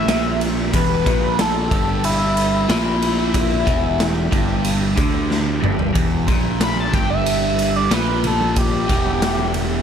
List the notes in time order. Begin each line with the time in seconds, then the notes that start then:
Already playing: G3 E4 G4 B4 E5
0.08 A#1 A#2, snare, ride
0.41 ride
0.73 E1 E2 B4, kick, ride
1.06 A#1 A#2, kick, ride
1.39 A4, snare, ride
1.71 G1 G2 A4, kick, ride
2.04 E4, ride
2.37 ride
2.68 A#1 A#2 E4, snare, ride
3.02 ride
3.34 kick, ride
3.66 E1 E2, kick, ride
4.00 snare, ride
4.31 G1 G2, kick, ride
4.64 ride
4.96 D2 D3, kick, ride
5.31 snare
5.61 G1 G2, mid tom
5.79 floor tom
5.93 E1 E2, kick, ride
6.27 A#1 A#2, kick, ride, low conga
6.43 high conga
6.61 B5, snare, ride
6.76 high conga
6.80 A5
6.92 G1 G2 G5, kick, snare, ride, low conga
7.10 E5
7.26 ride
7.59 ride
7.76 D5
7.90 A#1 A#2 B4, snare, ride
8.24 A4, ride, low conga
8.41 high conga
8.56 G4, kick, ride
8.89 E1 E2, kick, ride, low conga
9.07 high conga
9.22 snare, ride
9.39 high conga
9.54 ride, low conga